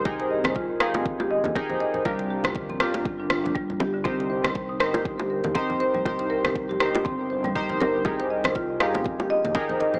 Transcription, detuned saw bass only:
X:1
M:4/4
L:1/16
Q:"Swing 16ths" 1/4=120
K:Cm
V:1 name="Detuned saw bass" clef=bass
C,,6 G,,,4- G,,, E,, z4 | C,,6 G,,,4 G,,,6 | C,,6 G,,,4- G,,, E,, z4 | C,,6 G,,,4 G,,,6 |
C,,6 G,,,4- G,,, E,, z4 |]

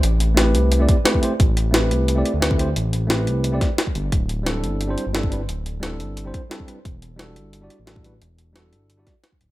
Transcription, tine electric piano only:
X:1
M:4/4
L:1/16
Q:1/4=176
K:Ador
V:1 name="Tine electric piano"
z4 [A,CEGB]4- [A,CEGB] [A,CEGd]2 z [A,CEGB]2 [A,CEGc] z | z4 [A,CEGB]4- [A,CEGB] [A,CEGd]2 z [A,CEGB]2 [A,CEGc] z | z4 [A,CEGB]4- [A,CEGB] [A,CEGd]2 z4 z | z4 [G,CDEA]4- [G,CDEA] [G,CDEc]2 z [G,CDEA]2 [G,CDEB] z |
z4 [G,CDEA]4- [G,CDEA] [G,CDEc]2 z [G,CDEA]2 [G,CDEB] z | z4 [G,DEFA]4- [G,DEFA] [G,DEFd]2 z [G,DEFA]2 [G,DEFB] z | z4 [G,DEFA]4- [G,DEFA] [G,DEFd]2 z4 z |]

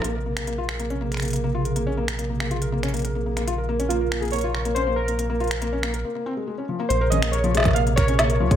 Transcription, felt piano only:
X:1
M:4/4
L:1/16
Q:1/4=140
K:Bbm
V:1 name="Felt piano"
B, B B, B, B, F B B, D B, B B, B, B, F B | B, D B, B B, B, B, F B B, D B, B B, B, B, | F B B, D B, B B, B, B, F B B, D B, B B, | B, B, F B B, D B, B B, B, C A, A, D F, B, |
B, B D B, B F, A, B B, B, B D B, B F, A, |]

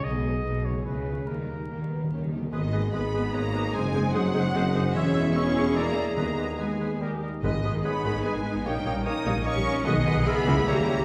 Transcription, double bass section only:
X:1
M:3/4
L:1/16
Q:1/4=147
K:G#m
V:1 name="Double bass section" clef=bass
B,,,4 B,,,4 C,,4 | D,,4 D,,4 D,,4 | G,,,4 G,,,4 G,,,4 | F,,4 F,,4 F,,4 |
E,,12 | D,,8- D,,2 z2 | G,,, G,,, G,,, G,,, z2 G,,, G,,, z G,,, z G,,, | A,,, A,,, A,,, A,,, z2 A,,, A,,, z A,,, z A,,, |
B,,, B,,, B,,, B,,, z2 C,, C,, z D,, z D,, |]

